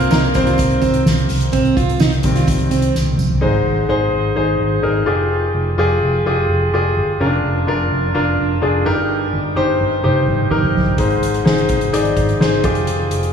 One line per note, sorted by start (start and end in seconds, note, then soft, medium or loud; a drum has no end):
0.00 0.12 A#3 medium
0.00 0.36 C4 medium
0.00 0.10 F4 medium
0.00 0.11 A#4 loud
0.00 0.35 C5 loud
0.00 closed hi-hat soft
0.11 0.31 C2 loud
0.11 0.34 A#3 medium
0.11 0.23 D#4 medium
0.11 0.36 A#4 medium
0.11 snare loud
0.11 tambourine medium
0.24 closed hi-hat soft
0.34 0.54 C2 medium
0.34 2.20 D#3 medium
0.34 2.20 G3 soft
0.34 2.24 C4 medium
0.34 2.91 C5 medium
0.34 kick medium
0.34 closed hi-hat medium
0.34 tambourine medium
0.47 0.58 F4 medium
0.47 closed hi-hat soft
0.58 0.78 C2 medium
0.58 kick medium
0.58 closed hi-hat loud
0.58 tambourine soft
0.70 closed hi-hat soft
0.81 1.02 C2 loud
0.81 1.04 C4 medium
0.81 kick medium
0.81 closed hi-hat medium
0.81 tambourine soft
0.94 closed hi-hat soft
1.06 1.26 C2 loud
1.06 snare loud
1.06 tambourine medium
1.18 closed hi-hat soft
1.29 1.49 C2 medium
1.29 open hi-hat medium
1.29 tambourine medium
1.41 closed hi-hat soft
1.52 1.72 C2 loud
1.52 1.75 C4 medium
1.52 kick loud
1.52 closed hi-hat medium
1.52 tambourine soft
1.65 closed hi-hat soft
1.77 1.96 C2 medium
1.77 1.99 F4 medium
1.77 kick loud
1.77 closed hi-hat medium
1.89 closed hi-hat soft
2.00 2.20 C2 medium
2.00 2.12 D#4 medium
2.00 snare loud
2.00 tambourine medium
2.13 closed hi-hat soft
2.23 2.43 C2 loud
2.23 2.55 D#3 medium
2.23 2.56 G3 soft
2.23 2.56 C4 medium
2.23 kick medium
2.23 closed hi-hat medium
2.23 tambourine medium
2.36 2.47 F4 medium
2.36 snare soft
2.36 closed hi-hat soft
2.47 2.67 C2 medium
2.47 kick medium
2.47 closed hi-hat loud
2.47 tambourine soft
2.59 closed hi-hat soft
2.71 2.91 C2 loud
2.71 2.94 C4 medium
2.71 closed hi-hat medium
2.71 tambourine soft
2.82 closed hi-hat soft
2.95 3.14 C2 medium
2.95 snare soft
2.95 tambourine medium
3.07 high tom medium
3.18 3.38 C2 medium
3.18 mid tom medium
3.18 tambourine medium
3.30 floor tom medium
3.41 3.62 G#1 medium
3.41 4.09 G#2 medium
3.41 3.82 D#4 medium
3.41 3.82 G#4 medium
3.41 3.82 C5 medium
3.65 3.85 G#1 medium
3.89 4.09 G#1 medium
3.89 4.29 D#4 medium
3.89 4.29 G#4 medium
3.89 4.29 C5 medium
4.13 4.32 G#1 medium
4.35 4.56 G#1 medium
4.35 4.76 D#4 medium
4.35 4.76 G#4 medium
4.35 4.77 C5 medium
4.60 4.79 G#1 medium
4.82 5.03 G#1 medium
4.82 5.07 D#4 medium
4.82 5.06 G#4 medium
4.82 5.07 A#4 medium
5.06 5.46 F1 medium
5.06 5.67 F4 medium
5.06 5.67 G4 medium
5.06 5.67 G#4 medium
5.54 5.74 F1 medium
5.78 5.98 F1 medium
5.78 6.18 F4 medium
5.78 6.19 G4 medium
5.78 6.19 G#4 medium
6.02 6.22 F1 medium
6.26 6.45 F1 medium
6.26 6.66 F4 medium
6.26 6.66 G4 medium
6.26 6.66 G#4 medium
6.49 6.69 F1 medium
6.74 6.93 F1 medium
6.74 7.13 F4 medium
6.74 7.13 G4 medium
6.74 7.14 G#4 medium
6.96 7.16 G1 medium
7.20 7.40 F1 medium
7.20 7.26 C#4 medium
7.20 7.60 F4 medium
7.20 7.61 A#4 medium
7.26 7.63 D4 medium
7.43 7.63 F1 loud
7.67 7.87 F1 medium
7.67 8.07 D4 medium
7.67 8.08 F4 medium
7.67 8.08 A#4 medium
7.92 8.11 F1 medium
8.14 8.34 F1 medium
8.14 8.55 D4 medium
8.14 8.55 F4 medium
8.14 8.55 A#4 medium
8.39 8.58 F1 medium
8.62 8.81 F1 medium
8.62 8.86 D4 medium
8.62 8.86 F4 medium
8.62 8.86 G#4 medium
8.85 9.25 G1 medium
8.85 9.53 G2 medium
8.85 9.45 D#4 medium
8.85 9.45 G4 medium
8.85 9.46 A#4 medium
9.33 9.53 G1 medium
9.56 9.76 G1 medium
9.56 9.96 D#4 medium
9.56 9.96 G4 medium
9.56 9.97 C5 medium
9.81 10.00 G1 medium
10.03 10.24 G1 medium
10.03 10.44 D#4 medium
10.03 10.44 G4 medium
10.03 10.44 C5 medium
10.03 high tom soft
10.28 10.47 G1 medium
10.28 mid tom medium
10.50 10.71 G1 medium
10.50 10.91 D#4 medium
10.50 10.91 G4 medium
10.50 10.91 A#4 medium
10.50 mid tom medium
10.63 mid tom medium
10.74 10.94 G1 medium
10.74 floor tom medium
10.86 floor tom medium
10.98 11.18 G#1 medium
10.98 11.66 G#2 medium
10.98 11.38 D#4 medium
10.98 11.38 G#4 medium
10.98 11.39 C5 medium
10.98 kick medium
10.98 closed hi-hat medium
11.10 closed hi-hat soft
11.22 11.41 G#1 medium
11.22 closed hi-hat medium
11.34 closed hi-hat soft
11.45 11.65 G#1 medium
11.45 11.85 D#4 medium
11.45 11.85 G#4 medium
11.45 11.86 C5 medium
11.45 snare loud
11.58 closed hi-hat soft
11.69 11.89 G#1 medium
11.69 kick medium
11.69 closed hi-hat medium
11.81 closed hi-hat soft
11.92 12.12 G#1 medium
11.92 12.33 D#4 medium
11.92 12.33 G#4 medium
11.92 12.33 D5 medium
11.92 closed hi-hat medium
12.05 closed hi-hat soft
12.17 12.36 G#1 medium
12.17 kick medium
12.17 closed hi-hat medium
12.29 closed hi-hat soft
12.39 12.59 G#1 medium
12.39 12.64 D#4 medium
12.39 12.63 G#4 medium
12.39 12.64 C5 medium
12.39 snare medium
12.64 13.03 F1 medium
12.64 13.24 F4 medium
12.64 13.24 G4 medium
12.64 13.24 G#4 medium
12.64 kick loud
12.64 closed hi-hat medium
12.75 closed hi-hat soft
12.87 closed hi-hat medium
13.10 13.30 F1 medium
13.10 closed hi-hat medium
13.23 closed hi-hat soft